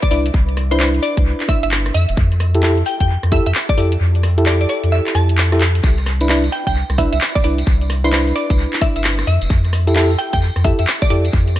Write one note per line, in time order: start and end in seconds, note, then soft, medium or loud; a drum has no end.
0.02 0.08 D5 medium
0.02 kick loud
0.02 closed hi-hat soft
0.11 0.31 C2 medium
0.11 0.26 D4 medium
0.11 0.26 E4 medium
0.11 0.26 B4 medium
0.11 0.20 D5 medium
0.11 open hi-hat loud
0.26 closed hi-hat medium
0.34 1.00 C2 loud
0.34 kick loud
0.49 closed hi-hat soft
0.57 cross-stick medium
0.57 open hi-hat loud
0.71 0.79 D4 medium
0.71 0.79 E4 medium
0.71 0.79 B4 medium
0.71 0.77 C5 medium
0.71 closed hi-hat medium
0.80 1.93 D4 medium
0.80 1.93 E4 medium
0.80 1.93 B4 medium
0.80 0.89 C5 medium
0.80 clap loud
0.94 closed hi-hat soft
1.03 1.17 D5 medium
1.03 open hi-hat loud
1.17 1.34 C2 medium
1.17 kick loud
1.17 closed hi-hat medium
1.40 clap medium
1.40 closed hi-hat medium
1.49 1.58 E5 medium
1.49 kick loud
1.49 cross-stick medium
1.49 open hi-hat loud
1.63 1.92 G1 medium
1.63 1.68 E5 medium
1.63 closed hi-hat medium
1.71 clap loud
1.86 cross-stick medium
1.86 closed hi-hat medium
1.94 2.06 F2 medium
1.94 2.60 E5 medium
1.94 open hi-hat loud
2.09 2.16 F1 medium
2.09 closed hi-hat medium
2.17 2.83 F2 loud
2.17 kick loud
2.32 closed hi-hat soft
2.40 cross-stick medium
2.40 open hi-hat loud
2.55 2.62 E4 medium
2.55 2.62 G4 medium
2.55 2.62 A4 medium
2.55 closed hi-hat medium
2.63 2.78 E4 medium
2.63 2.78 G4 medium
2.63 2.78 A4 loud
2.63 clap loud
2.77 closed hi-hat soft
2.86 2.95 G5 medium
2.86 open hi-hat loud
3.00 3.18 F2 medium
3.00 3.06 G5 medium
3.00 kick medium
3.00 closed hi-hat medium
3.23 3.41 F2 loud
3.23 cross-stick medium
3.23 closed hi-hat medium
3.32 3.47 E4 medium
3.32 3.47 G4 medium
3.32 3.47 A4 loud
3.32 3.41 E5 medium
3.32 kick loud
3.32 open hi-hat loud
3.46 3.53 F2 loud
3.46 3.52 E5 medium
3.46 closed hi-hat medium
3.55 clap loud
3.69 3.75 D5 medium
3.69 kick loud
3.69 closed hi-hat medium
3.77 3.97 F2 medium
3.77 3.92 E4 medium
3.77 3.92 G4 medium
3.77 3.92 A4 medium
3.77 3.87 D5 medium
3.77 open hi-hat loud
3.92 closed hi-hat medium
4.00 4.66 F2 loud
4.15 closed hi-hat soft
4.23 cross-stick medium
4.23 open hi-hat loud
4.38 4.45 E4 medium
4.38 4.45 G4 medium
4.38 4.45 A4 medium
4.38 closed hi-hat medium
4.46 5.49 E4 medium
4.46 5.49 G4 medium
4.46 5.49 A4 medium
4.46 4.56 D5 medium
4.46 clap loud
4.61 4.66 D5 medium
4.61 open hi-hat medium
4.69 4.84 D5 medium
4.69 open hi-hat loud
4.84 5.01 F2 medium
4.84 closed hi-hat medium
4.92 5.13 E5 medium
5.07 clap medium
5.07 closed hi-hat medium
5.15 5.81 F2 loud
5.15 5.52 A5 medium
5.15 cross-stick medium
5.15 open hi-hat loud
5.29 closed hi-hat medium
5.38 clap loud
5.52 5.61 E4 medium
5.52 5.61 G4 medium
5.52 5.61 A4 medium
5.52 cross-stick medium
5.52 closed hi-hat medium
5.61 clap medium
5.61 open hi-hat loud
5.75 closed hi-hat medium
5.84 6.50 C2 loud
5.84 kick loud
5.84 tambourine medium
5.97 closed hi-hat soft
5.97 tambourine soft
6.06 cross-stick medium
6.06 open hi-hat loud
6.21 6.28 D4 medium
6.21 6.28 E4 medium
6.21 6.28 B4 medium
6.21 closed hi-hat medium
6.21 tambourine medium
6.29 6.44 D4 medium
6.29 6.44 E4 medium
6.29 6.44 B4 loud
6.29 clap loud
6.29 tambourine medium
6.44 closed hi-hat soft
6.44 tambourine soft
6.52 6.62 G5 medium
6.52 open hi-hat loud
6.67 6.84 C2 medium
6.67 6.72 G5 medium
6.67 kick medium
6.67 closed hi-hat medium
6.67 tambourine medium
6.75 tambourine medium
6.90 7.07 C2 loud
6.90 cross-stick medium
6.90 closed hi-hat medium
6.90 tambourine soft
6.98 7.13 D4 medium
6.98 7.13 E4 medium
6.98 7.13 B4 loud
6.98 7.08 E5 medium
6.98 kick loud
6.98 open hi-hat loud
7.12 7.19 C2 loud
7.12 7.18 E5 medium
7.12 closed hi-hat medium
7.12 tambourine medium
7.21 clap loud
7.21 tambourine medium
7.35 7.41 D5 medium
7.35 kick loud
7.35 closed hi-hat medium
7.35 tambourine soft
7.44 7.64 C2 medium
7.44 7.59 D4 medium
7.44 7.59 E4 medium
7.44 7.59 B4 medium
7.44 7.53 D5 medium
7.44 open hi-hat loud
7.58 closed hi-hat medium
7.58 tambourine medium
7.67 8.33 C2 loud
7.67 kick loud
7.67 tambourine medium
7.81 closed hi-hat soft
7.81 tambourine soft
7.90 cross-stick medium
7.90 open hi-hat loud
8.04 8.11 D4 medium
8.04 8.11 E4 medium
8.04 8.11 B4 medium
8.04 8.10 C5 medium
8.04 closed hi-hat medium
8.04 tambourine medium
8.13 9.26 D4 medium
8.13 9.26 E4 medium
8.13 9.26 B4 medium
8.13 8.22 C5 medium
8.13 clap loud
8.13 tambourine medium
8.27 closed hi-hat soft
8.27 tambourine soft
8.36 8.50 D5 medium
8.36 open hi-hat loud
8.50 8.67 C2 medium
8.50 kick loud
8.50 closed hi-hat medium
8.50 tambourine medium
8.58 tambourine medium
8.73 clap medium
8.73 closed hi-hat medium
8.73 tambourine soft
8.81 8.91 E5 medium
8.81 kick loud
8.81 cross-stick medium
8.81 open hi-hat loud
8.96 9.25 G1 medium
8.96 9.01 E5 medium
8.96 closed hi-hat medium
8.96 tambourine medium
9.04 clap loud
9.04 tambourine medium
9.19 cross-stick medium
9.19 closed hi-hat soft
9.19 tambourine soft
9.27 9.39 F2 loud
9.27 9.93 E5 medium
9.27 open hi-hat loud
9.41 9.48 F1 loud
9.41 closed hi-hat medium
9.41 tambourine medium
9.50 10.16 F2 loud
9.50 kick loud
9.50 tambourine medium
9.65 closed hi-hat soft
9.65 tambourine soft
9.73 cross-stick medium
9.73 open hi-hat loud
9.87 9.95 E4 medium
9.87 9.95 G4 medium
9.87 9.95 A4 medium
9.87 closed hi-hat medium
9.87 tambourine medium
9.96 10.11 E4 loud
9.96 10.11 G4 medium
9.96 10.11 A4 loud
9.96 clap loud
9.96 tambourine medium
10.10 closed hi-hat soft
10.10 tambourine soft
10.19 10.28 G5 medium
10.19 open hi-hat loud
10.33 10.50 F2 medium
10.33 10.39 G5 medium
10.33 kick medium
10.33 closed hi-hat medium
10.33 tambourine medium
10.42 tambourine medium
10.56 10.73 F2 loud
10.56 cross-stick medium
10.56 closed hi-hat medium
10.56 tambourine soft
10.64 10.79 E4 medium
10.64 10.79 G4 medium
10.64 10.79 A4 loud
10.64 10.74 E5 medium
10.64 kick loud
10.64 open hi-hat loud
10.79 10.86 F2 loud
10.79 10.84 E5 medium
10.79 closed hi-hat medium
10.79 tambourine medium
10.87 clap loud
10.87 tambourine medium
11.02 11.07 D5 medium
11.02 kick loud
11.02 closed hi-hat soft
11.02 tambourine soft
11.10 11.30 F2 medium
11.10 11.25 E4 medium
11.10 11.25 G4 medium
11.10 11.25 A4 medium
11.10 11.20 D5 medium
11.10 open hi-hat loud
11.25 closed hi-hat medium
11.25 tambourine medium
11.33 11.60 F2 loud
11.33 kick loud
11.33 tambourine medium
11.47 closed hi-hat soft
11.47 tambourine soft
11.56 cross-stick medium
11.56 open hi-hat loud